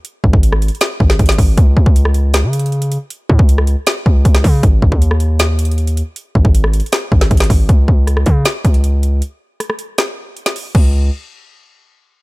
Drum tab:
CC |------------------------------------------------|------------------------------------------------|------------------------------------------------|------------------------------------------------|
HH |x-----------x-----x-x-x-x-----------x-x-x-o-----|x-----------x-----x-----x-----x-x-x-x--x--x-----|x-----------x-----x-----x-----------x-----o-----|x-----------x-----x-----x-----x-x-x-x--x--x-----|
SD |---------------r--------o--------o-----o--------|---------------r--------o-----------------------|---------------r--------o--------------o--------|---------------r--------o-----------------------|
BD |------o--o--------------------o-----o-----o-----|o-----o--o--------------------------------------|------o--o--------------------o-----o-----o-----|o-----o--o--------------------------------------|

CC |------------------------------------------------|------------------------------------------------|------------------------------------------------|x-----------------------------------------------|
HH |x-----------x-----x-x-x-x-----------x-x-x-o-----|x-----------x-----x-----x-----x--x--x-----x-----|x-----------x-----x-----x-----------x--x--o-----|------------------------------------------------|
SD |---------------r--------o--------o-----o--------|------------r--r--------o-----------------------|------------r--r--------o--------------o--------|------------------------------------------------|
BD |------o--o--------------------o-----o-----o-----|o-----o-----------o-----------o-----------------|------------------------------------------------|o-----------------------------------------------|